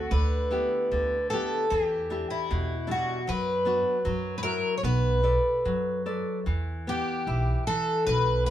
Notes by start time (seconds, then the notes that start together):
Already playing: F#4
0.11 D2 D3 B4
0.51 B3 E4 G4
0.92 D2 D3
1.30 B3 E4 G4 A4
1.70 E2 E3 G4
2.10 D4 E4 G4
2.30 E4
2.51 E2 B2
2.87 G3 D4 E4
2.91 F#4
3.27 F#2 F#3 B4
3.65 B3 D4 F#4
4.05 F#2 F#3
4.38 B4
4.43 E4 F#4 A#4
4.77 C#5
4.83 B1 B3 B4
5.23 A4 B4 D5
5.65 F#2 F#3
6.06 A4 B4 D5
6.46 E2 E3
6.87 B3 G4
7.27 B1 E4
7.67 E3 A4
8.06 B1 B2 B4
8.46 G4